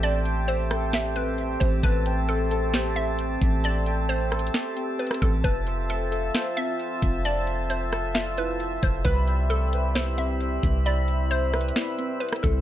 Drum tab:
HH |x-----x-----x-----x-----x-----x-----x-----x-----|x-----x-----x-----x-----x-----x-----x-----x-----|x-----x-----x-----x-x-x-x-----x-----x-x-x-x-----|x-----x-----x-----x-----x-----x-----x-----x-----|
SD |------------------r-----o-----------------------|------------------------o-----------------------|------------------r-----o--------------r--------|------------------------o-----------------------|
BD |------------------------------------------o-----|o-----------------------------------------o-----|------------------------------------------o-----|o-----------------------------------------o-----|

HH |x-----x-----x-----x-----x-----x-----x-----x-----|x-----x-----x-----x-----x-----x-----x-----x-----|x-----x-----x-----x-x-x-x-----x-----x-x-x-x-----|
SD |------------------r-----o-----------------------|------------------------o-----------------------|------------------r-----o--------------r--------|
BD |------------------------------------------o-----|o-----------------------------------------o-----|------------------------------------------o-----|